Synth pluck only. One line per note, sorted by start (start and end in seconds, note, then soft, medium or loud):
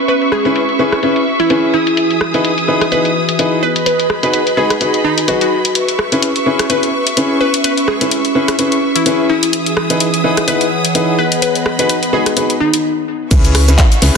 0.08 0.28 B4 medium
0.32 0.52 G#4 medium
1.40 1.59 E4 medium
1.74 2.21 E4 medium
2.92 3.12 B4 medium
3.63 3.83 B4 medium
3.86 4.06 B4 medium
4.23 4.30 B4 medium
4.34 4.42 B4 medium
4.57 4.77 G#4 medium
5.04 5.24 D#4 medium
5.28 5.36 F#4 medium
5.41 5.48 F#4 medium
6.70 6.90 B4 medium
7.41 7.61 B4 medium
7.64 7.84 B4 medium
7.88 8.08 G#4 medium
8.96 9.14 E4 medium
9.29 9.77 E4 medium
10.48 10.68 B4 medium
11.18 11.38 B4 medium
11.42 11.62 B4 medium
11.79 11.86 B4 medium
11.89 11.98 B4 medium
12.13 12.33 G#4 medium
12.60 12.80 D#4 medium